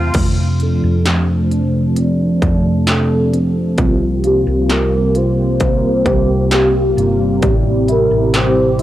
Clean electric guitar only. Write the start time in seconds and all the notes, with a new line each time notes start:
Already playing: A3 C4 F4
0.15 F3
0.61 D4
1.06 G4
1.29 A4
1.52 D4
1.97 C4
2.43 A4
2.88 D4
3.33 C4
3.79 F3
4.25 F4
4.69 G4
5.15 F4
5.61 A#3
6.06 G4
6.52 F4
6.98 A#3
7.43 G3
7.88 E4
8.34 G4
8.79 E4